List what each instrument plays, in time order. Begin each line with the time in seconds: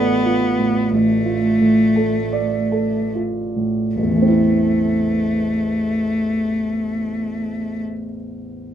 Already playing: grand piano A1 A2 F4 A4 D5, cello B3
0.25 grand piano F4
0.58 grand piano A2
0.90 grand piano A1, cello A3
1.25 grand piano F4
1.61 grand piano A2
1.96 grand piano A4
2.33 grand piano D5
2.72 grand piano A4
3.15 grand piano F4
3.56 grand piano A2
3.95 grand piano A1, cello A3
4.03 grand piano E2
4.09 grand piano E3
4.16 grand piano A3
4.22 grand piano C4
4.28 grand piano E4